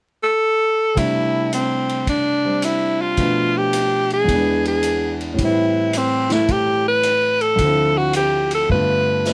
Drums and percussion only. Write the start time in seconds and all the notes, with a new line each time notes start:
0.97 kick, ride
1.53 hi-hat pedal, ride
1.89 ride
2.07 kick, ride
2.62 hi-hat pedal, ride
3.17 kick, ride
3.73 hi-hat pedal, ride
4.10 ride
4.28 kick, ride
4.65 ride
4.83 hi-hat pedal, ride
5.21 ride
5.38 kick, ride
5.93 hi-hat pedal, ride
6.30 snare, ride
6.48 kick, ride
7.03 hi-hat pedal, ride
7.41 ride
7.58 kick, ride
8.13 hi-hat pedal, ride
8.51 ride
8.70 kick
9.25 snare, hi-hat pedal